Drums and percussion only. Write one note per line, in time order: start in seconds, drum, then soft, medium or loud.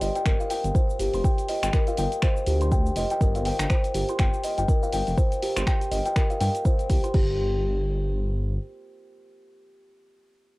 0.01 open hi-hat medium
0.01 cabasa medium
0.15 closed hi-hat medium
0.15 cabasa medium
0.26 finger snap medium
0.26 kick loud
0.26 cabasa medium
0.40 cabasa medium
0.50 open hi-hat medium
0.50 cabasa loud
0.64 closed hi-hat medium
0.64 cabasa medium
0.75 kick loud
0.75 cabasa loud
0.90 cabasa medium
0.99 open hi-hat medium
0.99 cabasa medium
1.13 open hi-hat soft
1.13 cabasa medium
1.24 kick loud
1.24 cabasa medium
1.38 closed hi-hat soft
1.38 cabasa medium
1.48 open hi-hat medium
1.48 cabasa medium
1.63 finger snap medium
1.63 closed hi-hat medium
1.63 cabasa medium
1.73 finger snap medium
1.73 kick loud
1.73 cabasa medium
1.87 closed hi-hat soft
1.87 cabasa soft
1.97 open hi-hat medium
1.97 cabasa medium
2.12 closed hi-hat medium
2.12 cabasa medium
2.22 finger snap medium
2.22 kick loud
2.22 cabasa medium
2.37 cabasa medium
2.46 open hi-hat medium
2.46 cabasa medium
2.61 closed hi-hat medium
2.61 cabasa medium
2.72 kick loud
2.72 cabasa medium
2.86 cabasa medium
2.96 open hi-hat medium
2.96 cabasa medium
3.10 closed hi-hat medium
3.10 cabasa medium
3.21 kick loud
3.21 cabasa medium
3.35 closed hi-hat soft
3.35 cabasa medium
3.45 open hi-hat loud
3.45 cabasa medium
3.59 finger snap medium
3.59 closed hi-hat medium
3.59 cabasa medium
3.70 finger snap medium
3.70 kick loud
3.70 cabasa medium
3.84 closed hi-hat soft
3.84 cabasa soft
3.94 open hi-hat medium
3.94 cabasa medium
4.09 closed hi-hat medium
4.09 cabasa soft
4.19 finger snap medium
4.19 kick loud
4.19 cabasa medium
4.34 cabasa medium
4.44 open hi-hat medium
4.44 cabasa medium
4.58 closed hi-hat medium
4.58 cabasa medium
4.68 kick loud
4.68 cabasa medium
4.83 cabasa medium
4.93 open hi-hat medium
4.93 cabasa medium
5.07 open hi-hat medium
5.07 cabasa soft
5.18 kick loud
5.18 cabasa medium
5.32 closed hi-hat soft
5.32 cabasa medium
5.43 open hi-hat loud
5.43 cabasa medium
5.57 finger snap loud
5.57 closed hi-hat medium
5.57 cabasa loud
5.67 finger snap medium
5.67 kick loud
5.67 cabasa medium
5.81 closed hi-hat soft
5.81 cabasa medium
5.92 open hi-hat loud
5.92 cabasa medium
6.06 closed hi-hat medium
6.06 cabasa medium
6.16 finger snap medium
6.16 kick loud
6.16 cabasa medium
6.30 closed hi-hat soft
6.30 cabasa medium
6.41 open hi-hat loud
6.41 cabasa medium
6.55 closed hi-hat medium
6.55 cabasa medium
6.65 kick loud
6.65 cabasa medium
6.79 closed hi-hat soft
6.79 cabasa medium
6.90 kick medium
6.90 open hi-hat medium
6.90 cabasa medium
7.04 closed hi-hat medium
7.04 cabasa medium
7.14 kick loud
7.14 crash medium